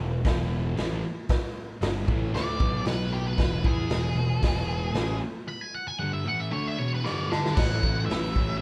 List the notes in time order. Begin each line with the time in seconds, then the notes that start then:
0.00 E1 E2 B2
0.24 E1 E2 B2 E3, kick, snare, open hi-hat
0.76 A1 A2 E3 A3, snare, open hi-hat
1.29 kick, snare, open hi-hat
1.81 G1 G2 D3 G3, snare, open hi-hat
2.07 A1 A2 E3 A3, kick
2.33 D2 D3 A3 D4 D5, snare, open hi-hat
2.60 B1 B2 F#3 B3, kick
2.85 B4, snare, open hi-hat
3.13 G4
3.27 B4
3.37 E1 E2 B2 E3, kick, snare, open hi-hat
3.63 E2 E3 B3 E4 G#4, kick
3.89 E1 E2 B2, snare, open hi-hat
4.15 E1 E2 B2
4.41 E1 E2 B2 E3, kick, snare, open hi-hat
4.94 A1 A2 E3 A3, snare, open hi-hat
5.48 B5
5.61 G#5
5.75 F#5
5.87 G#5
5.99 G2 D3 G3 F#5
6.13 E5
6.25 A2 E3 A3 F#5
6.40 E5
6.51 D3 A3 D4 C#5
6.67 E5
6.77 E2 B2 E3 C#5
6.94 B4
7.03 G2 D3 G3 C#5 D5, snare
7.31 A4, snare
7.46 snare
7.55 A1 A2 E3 A3 F#5, kick, snare, crash
7.82 A1 E3 A3, kick
8.06 A1 A2 E5
8.10 E3 A3, snare, open hi-hat
8.36 A1, kick
8.58 E5